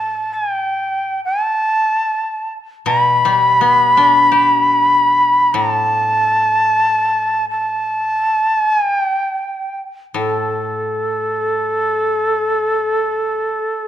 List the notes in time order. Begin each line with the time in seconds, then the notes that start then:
Already playing: A2 A5
0.34 G#5
0.53 G5
1.24 G#5
1.42 A5
2.86 B2 A#5
2.98 B5
3.25 G3
3.61 B3
3.97 D4
4.32 G4
5.53 A2 A#5
5.72 A5
7.50 A5
8.68 G#5
8.97 G5
10.14 A2 A4